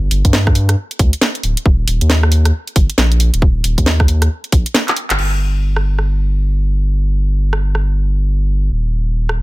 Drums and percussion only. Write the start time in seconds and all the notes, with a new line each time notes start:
0.11 open hi-hat
0.25 kick, closed hi-hat
0.33 snare
0.47 kick, cross-stick
0.55 open hi-hat
0.69 cross-stick, closed hi-hat
0.91 closed hi-hat
0.99 kick, open hi-hat
1.13 closed hi-hat
1.21 snare
1.35 closed hi-hat
1.43 open hi-hat
1.57 closed hi-hat
1.66 kick
1.88 open hi-hat
2.01 closed hi-hat
2.10 snare
2.23 cross-stick
2.32 open hi-hat
2.45 cross-stick, closed hi-hat
2.67 closed hi-hat
2.76 kick, open hi-hat
2.90 closed hi-hat
2.98 snare
3.12 closed hi-hat
3.20 open hi-hat
3.34 closed hi-hat
3.42 kick
3.64 open hi-hat
3.78 kick, closed hi-hat
3.86 snare
4.00 kick, cross-stick
4.08 open hi-hat
4.22 cross-stick, closed hi-hat
4.44 closed hi-hat
4.52 kick, open hi-hat
4.66 closed hi-hat
4.74 snare
4.88 clap, closed hi-hat
4.96 open hi-hat
5.10 clap, closed hi-hat
5.19 crash
5.76 cross-stick
5.99 cross-stick
7.53 cross-stick
7.75 cross-stick
9.29 cross-stick